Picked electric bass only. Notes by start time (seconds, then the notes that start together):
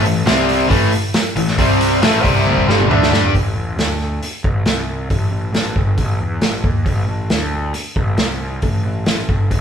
0.05 A1
0.27 C2
0.70 A1
1.35 A1
1.58 C2
2.02 A1
2.24 C2
2.68 G1
2.90 D2
3.12 G2
3.34 A1
3.56 A1
3.77 D2
4.22 muted picked electric bass stroke
4.44 A1
4.66 C2
5.10 A1
5.31 A1
5.54 A1
5.76 G1
5.98 A1
6.20 E2
6.41 A1
6.64 D#2
6.86 A1
7.08 A1
7.30 D2
7.74 muted picked electric bass stroke
7.96 A1
8.19 C2
8.63 A1
8.85 A1
9.06 A1
9.29 G1
9.51 A1